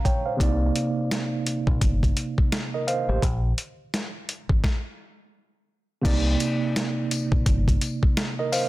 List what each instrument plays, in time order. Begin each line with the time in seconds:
Already playing: tine electric piano F5 A#5
0.05 tine electric piano C#5 G5, kick, closed hi-hat
0.26 tine electric piano C5 F5
0.37 fingered electric bass C2, tine electric piano C3 A#3 D#4, kick
0.41 tine electric piano D5, closed hi-hat
0.76 closed hi-hat
1.11 snare, closed hi-hat
1.47 closed hi-hat
1.67 fingered electric bass A#1, kick
1.81 fingered electric bass G1, kick, closed hi-hat
2.03 kick, closed hi-hat
2.17 closed hi-hat
2.38 kick
2.52 snare, closed hi-hat
2.74 tine electric piano A#4 D#5
2.87 tine electric piano C5 F5, closed hi-hat
3.09 fingered electric bass A1, tine electric piano G4 C5
3.22 fingered electric bass A#1, kick, closed hi-hat
3.58 closed hi-hat
3.94 snare, closed hi-hat
4.29 closed hi-hat
4.49 fingered electric bass G#1, kick
4.64 kick, snare
6.02 fingered electric bass C2, tine electric piano C3 A#3 D#4, kick, closed hi-hat, crash
6.06 tine electric piano D5
6.40 closed hi-hat, tambourine
6.76 snare, closed hi-hat
7.11 closed hi-hat, tambourine
7.32 fingered electric bass A#1, kick
7.46 fingered electric bass G1, kick, closed hi-hat
7.68 kick, closed hi-hat
7.81 closed hi-hat, tambourine
8.03 kick
8.17 snare, closed hi-hat
8.39 tine electric piano A#4 D#5
8.52 tine electric piano C5 F5, open hi-hat, tambourine